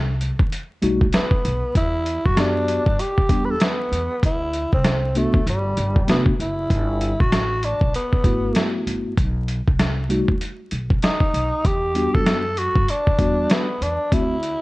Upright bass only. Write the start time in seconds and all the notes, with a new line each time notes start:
Already playing: C2
0.39 D#2
0.83 B1
1.45 B1
1.75 E2
2.25 F#2
2.86 G2
3.29 E2
3.91 E2
4.23 D2
4.73 C2
5.34 D2
5.47 G1
5.77 G1
6.08 F1
6.39 F#1
6.70 G1
7.20 A1
7.81 B1
8.24 G1
8.87 G1
9.17 B1
9.68 C2
10.28 D#2
10.72 B1
11.34 B1
11.65 E2
12.15 F#2
12.76 G2
13.19 E2
13.81 E2
14.12 D2